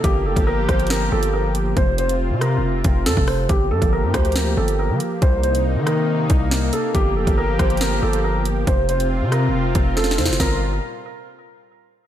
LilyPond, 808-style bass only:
\new Staff \with { instrumentName = "808-style bass" } { \clef bass \time 4/4 \key g \minor \tempo 4 = 139 g,,8 f,,16 g,,8. g,,4 g,,4. | f,,4~ f,,16 c8~ c32 f,,8~ f,,32 f,,8 f,16 f,,8. | g,,8 g,16 g,,8 g,16 d,4 g,,8. d16 r8 | c,4~ c,16 ees4~ ees16 c,4 r8 |
g,,8 f,,16 g,,8. g,,4 g,,4. | f,,4~ f,,16 c8~ c32 f,,8~ f,,32 f,,4 f,16 f,,16 | g,,4 r2. | }